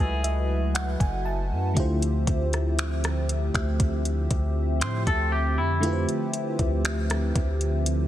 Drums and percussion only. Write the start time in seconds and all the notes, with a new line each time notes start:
0.24 closed hi-hat
0.75 finger snap, closed hi-hat
1.00 kick, closed hi-hat
1.77 kick, closed hi-hat
2.02 closed hi-hat
2.27 kick, closed hi-hat
2.53 cross-stick, closed hi-hat
2.79 finger snap, closed hi-hat
3.04 cross-stick, closed hi-hat
3.29 closed hi-hat
3.54 finger snap, kick, closed hi-hat
3.80 kick, closed hi-hat
4.05 closed hi-hat
4.31 kick, closed hi-hat
4.81 finger snap, closed hi-hat
5.07 kick, closed hi-hat
5.83 closed hi-hat
6.09 closed hi-hat
6.34 closed hi-hat
6.59 kick, closed hi-hat
6.85 finger snap, closed hi-hat
7.10 cross-stick, closed hi-hat
7.36 kick, closed hi-hat
7.61 closed hi-hat
7.86 closed hi-hat